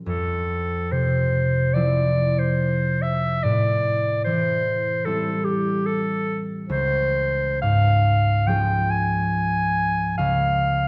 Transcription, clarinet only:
0.06 A4
0.92 C5
1.74 D5
2.39 C5
3.02 E5
3.43 D5
4.24 C5
5.05 A4
5.44 G4
5.86 A4
6.69 C5
7.62 F5
8.47 G5
8.91 G#5
10.18 F5

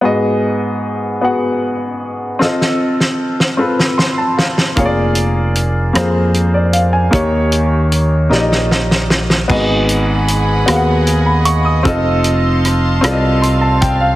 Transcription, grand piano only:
0.01 G#2 B3 F#4 G#4 D#5
1.21 B3 F#4 G#4 F#5
2.39 C4 F4 A4 D#5
3.57 C4 F4 A4 B4
3.98 C6
4.18 A5
4.37 F5
4.76 A#3 F4 G#4 C#5
4.85 D5
5.93 A#3 F4 G#4 C5
6.54 D5
6.73 F5
6.93 G#5
7.11 D#3 A#3 D#4 G4 C#5
8.29 A#3 D#4 G4 D5
8.39 D#5
9.48 G#2 B3 F#4 G#4 D#5
10.66 B3 F#4 G#4 F5
10.76 F#5
11.26 B5
11.45 C#6
11.65 D#6
11.83 C4 F4 A4 D#5
13.01 C4 F4 A4 D5
13.11 D#5
13.42 C6
13.61 A5
13.81 G5
14.01 F5

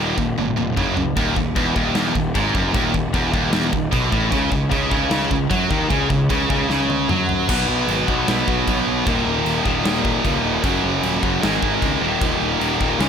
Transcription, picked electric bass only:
Already playing: D#1
0.18 D#1
0.38 G#1
0.58 F1
0.77 F#1
1.17 D#1
1.36 D#1
1.57 E1
1.76 D#1
1.95 E1
2.15 D#1
2.35 G#1
2.55 F#1
2.74 D#1
2.94 D#1
3.14 E1
3.33 D#1
3.53 E1
3.73 D#1
3.93 B1
4.12 A1
4.32 C#2
4.51 C#2
4.71 C#2
4.91 C#2
5.11 C#2
5.31 C#2
5.51 F#2
5.71 D#2
5.90 C#2
6.10 C#2
6.30 C#2
6.50 C#2
6.69 C#2
7.09 F#2
7.49 B1
7.68 B1
7.88 G#1
8.08 B1
8.29 B1
8.48 B1
8.67 B1
8.87 B1
9.07 D#1
9.26 D#1
9.45 D#1
9.66 D#1
9.84 D#1
10.25 C#2
10.43 D#1
10.64 F#1
10.84 F#1
11.04 D#1
11.23 F#1
11.43 G#1
11.63 G#1
11.82 C#2
12.02 D#1
12.21 D#1
12.41 D#1
12.61 D#1
12.81 D#1
12.99 C#2

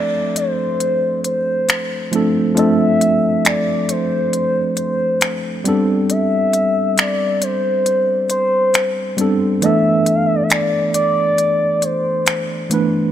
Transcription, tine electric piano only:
Already playing: F3 A3 C4 D4 A4
2.11 F3 A3 C4 D4
2.16 A4
2.55 F3 A3 C4 D4
2.59 A4
5.64 G3 B3 C4 D4
5.69 A4
9.17 G3 B3 C4 D4
9.21 A4
9.61 E3 A3 B3 D4
9.66 A4
12.69 E3 A3 B3 D4
12.74 B4

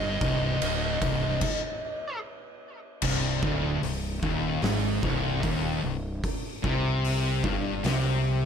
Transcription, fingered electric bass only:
Already playing: G1
0.21 C1
0.61 D1
1.01 C1
3.03 C1
3.42 D1
3.82 C1
4.22 D#1
4.62 G#1
5.03 C1
5.43 D#1
5.83 C1
6.64 C2
7.44 G1
7.84 C2

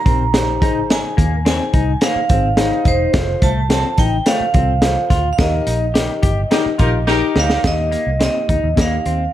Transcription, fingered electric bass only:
0.06 A#1
0.62 G#1
1.18 D#2
1.74 C2
2.16 muted fingered electric bass stroke
2.30 G#1
2.86 E1
3.14 F1
3.42 C2
3.98 A1
4.40 muted fingered electric bass stroke
4.54 C2
5.10 D2
5.39 D#2
5.67 A#1
6.23 G1
6.66 muted fingered electric bass stroke
6.80 A#1
7.36 D2
7.64 D#2
8.07 C2
8.49 D2
8.64 D#2
8.77 D#2
9.06 D#2

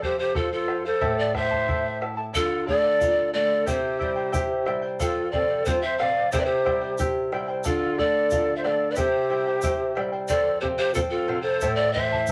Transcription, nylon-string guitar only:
Already playing: F2
1.01 A2
2.36 D3
2.69 A3
3.01 F4
3.34 A3
3.68 C3
4.02 G3
4.34 G4
4.68 G3
5.01 F2
5.34 C3
5.67 C4
6.01 C3
6.33 C3
6.66 G3
6.99 G4
7.32 G3
7.66 D3
7.99 A3
8.32 F4
8.65 A3
8.97 C3
9.30 G3
9.63 G4
9.97 G3
10.30 F2
10.62 C3
10.96 C4
11.28 C3
11.63 A2
11.95 E3

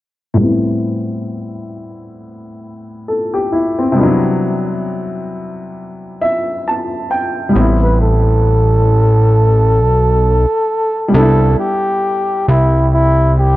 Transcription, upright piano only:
0.34 A2 G3
0.39 B3 C4
0.45 E4
3.08 A4
3.34 G4
3.52 E4
3.79 C4
3.92 C3 G3
3.97 B3 D4
4.01 F#3 D#4
4.07 E4
6.21 E5
6.68 A5
7.11 G5
7.49 G3 B3
7.56 C4 E4
11.08 G3 B3
11.16 D4 E4

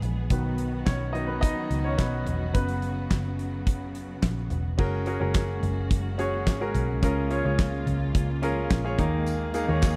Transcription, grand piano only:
Already playing: E3 G#3 B3 C#4 C#5
0.30 D#3 F#3 B3
0.86 C#4 C#5
1.13 D#3 F#3 B3 D#4 D#5
1.27 B3 B4
1.41 D#4 D#5
1.84 C#4 C#5
1.97 B3 B4
2.54 C#3 F#3 B3 B4
4.78 C#4 F#4 G#4 A#4
5.06 C#4 F#4 G#4 A#4
5.20 C#4 F#4 G#4 A#4
6.18 C#4 F#4 G#4 C#5
6.60 C#4 F#4 G#4 A#4
7.03 C#3 C#4 F4 G#4 A#4
7.30 C#4 F4 G#4 C#5
7.45 C#4 F4 G#4 C#5
8.42 C#4 F4 G#4 A#4
8.84 C#4 F4 G#4 C#5
8.98 D#3 A#3 D#4 G#4 A#4
9.54 A#3 D#4 G#4 A#4
9.68 A#3 D#4 G#4 C#5

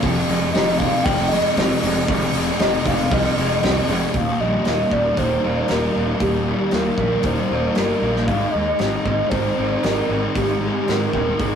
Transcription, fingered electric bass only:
0.03 F1
0.29 F1
0.56 F1
1.05 F1
1.57 F1
1.83 F1
2.09 F1
2.33 F1
2.61 F1
2.86 F1
3.11 C2
3.37 F1
3.63 C2
3.89 F1
4.14 D#1
4.40 A#1
4.66 D#1
4.92 D#1
5.18 D#1
5.45 D#1
5.70 D#1
5.96 D#1
6.20 D#1
6.72 D#2
6.97 A#1
7.23 D#1
7.50 D#1
7.76 G1
8.02 A#1
8.28 G#1
8.54 D#2
8.80 G#1
9.05 G#1
9.31 G#1
9.58 G#1
9.84 G#1
10.09 G#1
10.36 G#1
10.89 G#2
11.14 D#1
11.40 G#1

